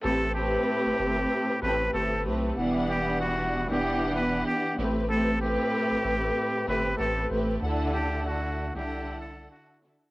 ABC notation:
X:1
M:4/4
L:1/16
Q:"Swing 16ths" 1/4=95
K:Ador
V:1 name="Muted trumpet"
A2 G8 B2 A2 z2 | z2 G2 F3 G3 B2 G2 z2 | A2 G8 B2 A2 z2 | z2 G2 F3 G3 A2 F2 z2 |]
V:2 name="String section"
[A,,A,CGB]2 [A,,A,CGB]6- [A,,A,CGB] z [A,,A,CGB]2 [A,,A,CGB]2 [A,,A,CGB]2 | [E,G,B,Df]6 z [E,B,DGf]6 z [A,,A,CGB]2 | [A,,A,CGB]2 [A,,A,CGB]6- [A,,A,CGB] z [A,,A,CGB]2 [A,,A,CGB]2 [A,,A,CGB]2 | [D,DEAf]6 z [D,DEAf]6 z [D,DEFA]2 |]
V:3 name="Sub bass" clef=bass
A,,,4 z G,,, G,,,2 z2 A,,,2 G,,,2 B,,,2 | E,,,6- E,,, E,,,4- E,,, z2 A,,,2- | A,,,4 z A,,, A,,,2 z2 G,,,2 A,,,2 A,,,2 | D,,6- D,, C,,4- C,, z4 |]